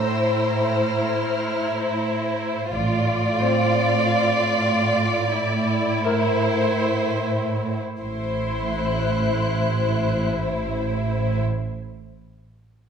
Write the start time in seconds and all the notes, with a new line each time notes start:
Already playing: A2 C5 A#5 E6
0.10 E4
0.66 F6
2.73 A1 A2 F4 D5
3.40 C4 C5
5.39 E4
6.04 A#4 C5
8.00 A1 A2 E4 C5 C6
8.67 F#6